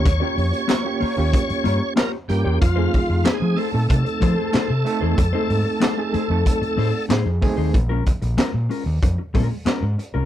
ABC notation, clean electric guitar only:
X:1
M:4/4
L:1/16
Q:1/4=94
K:Bbdor
V:1 name="Clean electric guitar"
z [B,FGd] z2 [B,FGd] z [B,FGd] z3 [B,FGd] z [B,FGd] z2 [B,FGd] | z [=A,E^Gc] z2 [A,EGc] z [A,EGc] z3 [A,EGc] [A,EGc] [A,EGc] z2 [A,EGc] | z [=A,E^Gc] z2 [A,EGc] z [A,EGc] z3 [A,EGc] z [A,EGc] z2 [A,EGc] | z [A,DFB] z2 [A,DFB] z [A,DFB] z3 [A,DFB] z [A,DFB] z2 [A,DFB] |]